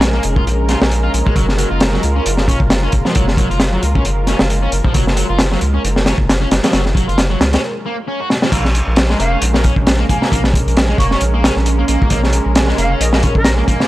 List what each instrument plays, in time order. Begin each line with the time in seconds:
Already playing: sub bass A#1, analog synth pad G#3 C#4 A#4
0.01 snare, closed hi-hat
0.14 distorted electric guitar A#3
0.23 sub bass F1, closed hi-hat
0.36 distorted electric guitar F4, kick
0.46 sub bass A#1, closed hi-hat
0.69 distorted electric guitar F4, snare, closed hi-hat
0.81 sub bass A#1, snare
0.91 closed hi-hat
1.04 distorted electric guitar F4
1.14 sub bass A#1, closed hi-hat
1.26 distorted electric guitar G#3, kick
1.36 sub bass F#1, distorted electric guitar F#3, analog synth pad F4, kick, closed hi-hat
1.49 snare
1.58 distorted electric guitar F#3, closed hi-hat
1.71 sub bass F#1, distorted electric guitar F4
1.80 snare, closed hi-hat
1.93 distorted electric guitar F#3, snare
2.03 sub bass C#2, closed hi-hat
2.16 distorted electric guitar C#4
2.26 sub bass F#1, closed hi-hat
2.37 snare
2.48 distorted electric guitar C#4, kick, closed hi-hat
2.60 sub bass F#1, kick
2.70 snare, closed hi-hat
2.83 distorted electric guitar C#4
2.92 sub bass F#1, kick, closed hi-hat
3.05 distorted electric guitar F3, snare
3.15 sub bass F#1, distorted electric guitar F#3, kick, closed hi-hat
3.28 snare
3.37 distorted electric guitar F#3, kick, closed hi-hat
3.50 sub bass F#1, distorted electric guitar F4, closed hi-hat
3.60 snare, closed hi-hat
3.73 distorted electric guitar F#3
3.83 sub bass C#2, closed hi-hat
3.95 distorted electric guitar C#4, kick
4.05 sub bass F#1, closed hi-hat
4.27 distorted electric guitar C#4, snare, closed hi-hat
4.39 sub bass F#1, snare
4.50 closed hi-hat
4.63 distorted electric guitar C#4
4.72 sub bass F#1, closed hi-hat
4.85 distorted electric guitar F3, kick
4.94 sub bass F#1, distorted electric guitar F#3, kick, closed hi-hat
5.07 snare
5.17 distorted electric guitar F#3, closed hi-hat
5.29 sub bass F#1, distorted electric guitar F4
5.39 snare, closed hi-hat
5.52 distorted electric guitar F#3, snare
5.61 sub bass C#2, closed hi-hat
5.74 distorted electric guitar C#4
5.84 sub bass F#1, closed hi-hat
5.96 snare
6.06 distorted electric guitar C#4, snare, closed hi-hat
6.18 sub bass F#1, kick
6.29 snare, closed hi-hat
6.41 distorted electric guitar C#4
6.51 sub bass F#1, snare, closed hi-hat
6.63 distorted electric guitar F3, snare, closed hi-hat
6.73 sub bass F#1, distorted electric guitar F#3, snare, closed hi-hat
6.86 snare
6.95 distorted electric guitar F#3, kick, closed hi-hat
7.08 sub bass F#1, distorted electric guitar F4, closed hi-hat
7.18 snare, closed hi-hat
7.30 distorted electric guitar F#3
7.40 sub bass C#2, snare, closed hi-hat
7.53 distorted electric guitar C#4, snare, closed hi-hat
7.86 distorted electric guitar A#3
8.08 distorted electric guitar C#4
8.20 distorted electric guitar F#4
8.30 snare
8.42 distorted electric guitar F3, snare
8.52 sub bass A#1, analog synth pad G#3 C#4 A#4, distorted electric guitar A#3, kick, closed hi-hat, crash
8.65 snare
8.75 closed hi-hat
8.87 sub bass A#1
8.96 snare, closed hi-hat
9.10 distorted electric guitar G#3, snare
9.20 sub bass F1, distorted electric guitar A#3, flute F5, closed hi-hat
9.32 distorted electric guitar C#4
9.42 sub bass A#1, closed hi-hat
9.54 distorted electric guitar A#3, snare
9.64 distorted electric guitar C#4, kick, closed hi-hat
9.76 sub bass A#1, kick
9.87 snare, closed hi-hat
9.99 distorted electric guitar A#3
10.09 sub bass A#1, distorted electric guitar A#3, flute G#5, kick, closed hi-hat
10.22 flute G#5, snare
10.32 sub bass A#1, distorted electric guitar A#3, kick, closed hi-hat
10.44 snare
10.54 kick, closed hi-hat
10.67 sub bass A#1, closed hi-hat
10.77 snare, closed hi-hat
10.89 distorted electric guitar G#3
10.98 sub bass F1, distorted electric guitar A#3, flute C#6, kick, closed hi-hat
11.11 distorted electric guitar C#4, flute C#6, snare
11.21 sub bass A#1, closed hi-hat
11.34 distorted electric guitar A#3
11.44 distorted electric guitar C#4, snare, closed hi-hat
11.56 sub bass A#1, snare
11.66 closed hi-hat
11.79 distorted electric guitar A#3
11.88 sub bass A#1, distorted electric guitar A#3, closed hi-hat
12.02 kick
12.10 sub bass A#1, distorted electric guitar A#3, kick, closed hi-hat
12.24 snare
12.33 closed hi-hat
12.46 sub bass A#1
12.55 snare, closed hi-hat
12.68 distorted electric guitar G#3, snare
12.78 sub bass F1, distorted electric guitar A#3, flute F5, closed hi-hat
12.91 distorted electric guitar C#4
13.00 sub bass A#1, flute D#5, closed hi-hat
13.13 distorted electric guitar A#3, flute D#5, snare
13.23 distorted electric guitar C#4, kick, closed hi-hat
13.35 sub bass A#1, flute A#4, kick
13.45 snare, closed hi-hat
13.58 distorted electric guitar A#3
13.68 sub bass A#1, distorted electric guitar A#3, kick, closed hi-hat
13.80 snare